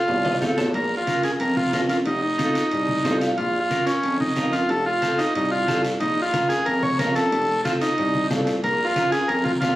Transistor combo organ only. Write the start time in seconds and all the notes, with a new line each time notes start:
Already playing: F4
0.75 A#4
0.97 F4
1.24 G#4
1.41 A#4
1.57 F4
1.74 F4
1.90 F4
2.06 D#4
2.22 D#4
3.38 F4
3.60 F4
3.87 C#4
4.20 D#4
4.53 F4
4.70 A4
4.86 F4
5.18 D#4
5.35 D#4
5.51 F4
6.00 D#4
6.22 F4
6.49 G#4
6.66 A#4
6.83 C#5
6.99 A#4
7.15 A4
7.65 F4
7.81 D#4
8.64 A#4
8.85 F4
9.12 G#4
9.28 A#4
9.44 F4
9.60 F4